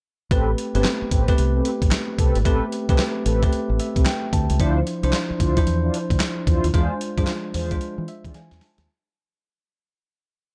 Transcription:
0.31 A1 A3 C4 G4 A4 B4, kick, closed hi-hat
0.58 closed hi-hat
0.74 G1 A3 B3 C4 G4 A4 B4, closed hi-hat
0.82 C4, snare, clap, closed hi-hat
1.02 muted fingered electric bass stroke
1.11 A1 C4 G4 A4 B4, kick, closed hi-hat
1.28 A3 C4 G4 B4, kick, closed hi-hat
1.38 C2, closed hi-hat
1.55 C4 G4 A4 B4
1.65 closed hi-hat
1.82 A1, kick, closed hi-hat
1.91 snare, clap, closed hi-hat
2.18 C2 C4 G4 A4 B4, kick, closed hi-hat
2.35 G#1, closed hi-hat
2.45 A1 A3 C4 G4 A4 B4, kick, closed hi-hat
2.72 closed hi-hat
2.89 C2 A3 C4 G4 A4 B4, kick, closed hi-hat
2.98 snare, clap, closed hi-hat
3.25 A1 C4 G4 A4 B4, closed hi-hat
3.43 A3 C4 G4 B4, kick, closed hi-hat
3.53 muted fingered electric bass stroke, closed hi-hat
3.70 A1
3.80 E5, closed hi-hat
3.96 C2 C4 G4 A4 B4, kick, closed hi-hat
4.06 G5, snare, clap, closed hi-hat
4.33 D2 A5, kick, closed hi-hat
4.50 C#2, closed hi-hat
4.59 D2 F3 D4 E4 F4 C5, kick, closed hi-hat
4.87 closed hi-hat
5.03 C2 F3 D4 E4 F4 C5, closed hi-hat
5.13 snare, clap, closed hi-hat
5.30 muted fingered electric bass stroke
5.39 D2 D4 E4 F4 C5, kick, closed hi-hat
5.57 F3 D4 E4 C5, kick, closed hi-hat
5.67 E2, closed hi-hat
5.83 D4 E4 F4 C5
5.94 closed hi-hat
6.10 D2, kick, closed hi-hat
6.20 snare, clap, closed hi-hat
6.47 E2 D4 E4 F4 C5, kick, closed hi-hat
6.64 D#2, closed hi-hat
6.73 E2 G#3 D4 F4 G#4 C5, kick, closed hi-hat
7.01 closed hi-hat
7.17 G2 F3 D4 F4 G#4 C5, kick, closed hi-hat
7.24 G#3, snare, clap, closed hi-hat
7.54 E2 D4 F4 G#4 C5, open hi-hat
7.71 G#3 D4 F4 C5, kick, closed hi-hat
7.81 closed hi-hat
7.98 E3
8.08 E5, closed hi-hat
8.24 E3 D4 F4 G#4 C5, kick, closed hi-hat
8.34 E3 G#5, snare, closed hi-hat
8.51 E2, snare
8.61 A5, snare, open hi-hat
8.78 D#2, snare, closed hi-hat

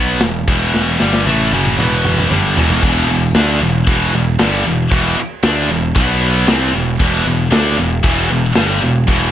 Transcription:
Already playing: B1 B2 F#3 B3
0.21 E1 E2 B2, snare, open hi-hat
0.48 E1 E2 B2 E3, kick
0.74 snare
1.00 G1 G2 D3 G3, snare
1.13 snare
1.26 A1 A2 E3 A3, high tom
1.52 F#1 F#2 C#3 F#3, high tom
1.66 mid tom
1.78 E1 E2 B2 E3, mid tom
2.05 mid tom
2.18 mid tom
2.30 G1 G2 D3 G3, mid tom
2.56 E1 E2 B2 E3, floor tom
2.70 floor tom
2.83 E1 E2 B2 E3, kick, crash
3.09 E1 E2 B2
3.35 D2 D3 A3 D4, snare, crash
3.61 E1 E2 B2
3.87 E1 E2 B2 E3, kick, crash
4.13 E1 E2 B2
4.39 G1 G2 D3 G3, snare, crash
4.65 E1 E2 B2
4.92 E1 E2 B2 E3, kick, crash
5.17 muted picked electric bass stroke, muted distorted electric guitar stroke
5.43 D2 D3 A3 D4, snare, crash
5.69 E1 E2 B2
5.95 B1 B2 F#3 B3, kick, crash
6.47 C2 C3 G3 C4, snare, crash
6.73 E1 E2 B2
6.99 E1 E2 B2 E3, kick, crash
7.25 E1 E2 B2
7.51 D2 D3 A3 D4, snare, crash
7.77 E1 E2 B2
8.03 E1 E2 B2 E3, kick, crash
8.30 E1 E2 B2
8.55 G1 G2 D3 G3, snare, crash
8.82 E1 E2 B2
9.07 E1 E2 B2 E3, kick, crash

